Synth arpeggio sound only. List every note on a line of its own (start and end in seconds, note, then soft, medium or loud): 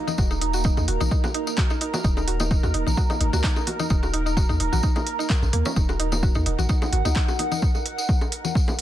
0.07 0.12 D#4 medium
0.18 0.26 F#4 medium
0.31 0.33 D#4 loud
0.41 0.47 D#4 medium
0.54 0.61 F#4 medium
0.65 0.68 D#4 loud
0.77 0.82 D#4 medium
0.88 0.96 F#4 medium
1.01 1.03 D#4 loud
1.11 1.17 D#4 medium
1.24 1.30 F#4 medium
1.35 1.38 D#4 loud
1.47 1.52 D#4 medium
1.58 1.66 F#4 medium
1.71 1.73 D#4 loud
1.81 1.86 D#4 medium
1.94 2.00 F#4 medium
2.04 2.07 D#4 loud
2.17 2.21 D#4 medium
2.28 2.35 F#4 medium
2.40 2.43 D#4 loud
2.51 2.56 D#4 medium
2.63 2.70 F#4 medium
2.74 2.77 D#4 loud
2.87 2.91 D#4 medium
2.97 3.05 F#4 medium
3.10 3.12 D#4 loud
3.21 3.26 D#4 medium
3.33 3.40 F#4 medium
3.44 3.47 D#4 loud
3.56 3.61 D#4 medium
3.67 3.75 F#4 medium
3.80 3.82 D#4 loud
3.90 3.96 D#4 medium
4.03 4.09 F#4 medium
4.14 4.17 D#4 loud
4.26 4.31 D#4 medium
4.37 4.45 F#4 medium
4.49 4.52 D#4 medium
4.60 4.65 D#4 medium
4.73 4.79 F#4 medium
4.83 4.86 D#4 loud
4.96 5.00 D#4 medium
5.19 5.26 D#4 loud
5.30 5.33 A#4 medium
5.53 5.61 A#3 loud
5.66 5.70 C#4 loud
5.76 5.82 D#4 medium
5.89 5.96 F#4 medium
6.00 6.03 D#4 loud
6.12 6.17 D#4 medium
6.23 6.31 F#4 medium
6.35 6.38 D#4 loud
6.46 6.51 D#4 medium
6.59 6.65 F#4 medium
6.69 6.72 D#4 loud
6.82 6.86 D#4 medium
6.93 7.00 F#4 medium
7.05 7.08 D#4 loud
7.16 7.21 D#4 medium
7.28 7.35 F#4 medium
7.39 7.42 D#4 loud
7.52 7.56 D#4 medium